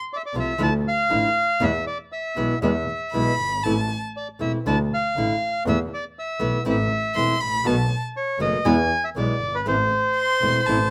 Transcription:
0.13 D5 E5
0.26 D5
0.34 C2 C3 F3 A3 C4 F4
0.40 E5
0.58 D2 D3 F3 A3 D4 E4
0.63 A5
0.88 F5
1.10 A1 D3 F3 A3 D4 E4
1.60 E2 B2 E3 G#3 B3 E4 E5
1.87 D5
2.12 E5
2.36 B1 B2 E3 G#3 B3 E4
2.61 E2 B2 E3 G#3 B3 E4 E5
3.12 B1 B2 E3 G#3 B3 E4 B5
3.38 G1
3.63 A1 E3 A3 C4 E4 A5
4.17 D5
4.39 E1 E3 A3 C4 E4 E5
4.65 D2 D3 A3 D4 E4 A5
4.94 F5
5.16 A1 D3 A3 D4 E4
5.66 E2 E3 A3 B3 E4 E5
5.94 D5
6.19 E5
6.39 B1 E3 A3 B3 E4
6.65 A1 E3 A3 C4 E4
6.69 E5
7.15 E1 E3 A3 C4 E4 C6
7.41 A1 B5
7.64 B1 B2 D#3 A3 B3 F#4 A5
8.17 C#5
8.39 F#1 B2 D#3 A3 B3 F#4 D#5
8.65 E2 B2 E3 G#3 B3 E4 G#5
9.04 E5
9.15 B1 B2 E3 G#3 B3 E4 D5
9.40 G1
9.55 B4
9.65 A1 E3 A3 C4 E4 C5
10.16 C6
10.41 E1 E3 A3 C4 E4
10.66 A1 E3 A3 C4 E4 A5

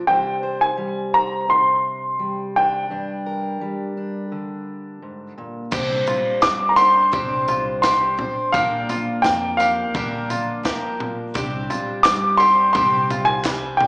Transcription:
0.07 C3 G3 D4 C5 G5
0.43 C5
0.61 G#5
0.77 G3
1.14 C5 A#5
1.48 C3 C6
2.19 G3
2.56 D4 G5
2.90 G2 D4
3.26 A#4
3.61 G3
3.97 D4
4.32 D3
5.02 G#2
5.38 A#2
5.71 C2 C3 G3 C4 D4 G4 C5, kick, floor tom, crash, tambourine
6.07 F4, floor tom, tambourine
6.41 G2 G3 C4 D4 C5 D6, kick, snare, tambourine
6.69 A#5
6.76 D4 G4 C5 C6, tambourine
6.81 C4
7.12 C2 C3 G3 C4 D4 G4 C5, kick, floor tom, tambourine
7.48 F4, floor tom, tambourine
7.82 G3 C4 D4 G4 C5 C6, kick, snare, tambourine
8.17 C4 D4 C5, floor tom
8.52 A#1 A#2 D3 F3 A#3 D4 G4 A#4 F5, kick, floor tom, tambourine
8.89 F4, floor tom, tambourine
9.22 F2 F3 A#3 D4 G5, kick, snare, tambourine
9.26 A#4
9.57 A#3 D4 G4 A#4 F5, tambourine
9.62 F3
9.94 A#1 A#2 D3 F3 A#3 D4 G4 A#4, kick, floor tom, tambourine
10.30 F4, floor tom, tambourine
10.63 F3 A#3 D4 G4 A#4, kick, snare, tambourine
11.00 floor tom
11.34 C2 C3 G3 C4 D4 G4, kick, floor tom, tambourine
11.70 F4, floor tom, tambourine
12.03 G2 G3 C4 D4 G4 D6, kick, snare, clap, tambourine
12.37 D4 G4 C6
12.42 C4
12.73 C2 C3 G3 C4 D4 G4 C6, kick, floor tom, tambourine
13.10 F4, floor tom, tambourine
13.25 G#5
13.44 G3 C4 D4, kick, snare, clap, tambourine
13.77 G4 G5, floor tom
13.82 D4

